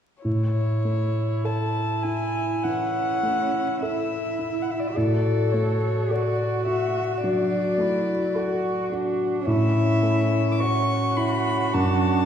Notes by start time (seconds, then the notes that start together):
0.24 A2 E4 C#5
0.85 A3
1.44 A4 A5
2.03 E4 G#5
2.63 E3 C#4 F#5
3.23 A3
3.81 E4 A4 E5
4.39 E4
4.62 F#5
4.71 E5
4.80 D5
4.87 E5
4.96 A2 F#4 A4 D5
5.52 A3 C#5
6.10 F#4 A4 D5
6.66 F#4 E5
7.24 F#3 D4 D5
7.78 A3 E4
8.35 F#4 A4
8.92 D4 F#4
9.46 A2 C#4 E4 E5
10.03 A3
10.52 D6
10.60 F#4 C#5 C#6
11.17 E4 B5
11.73 F#2 D4 A5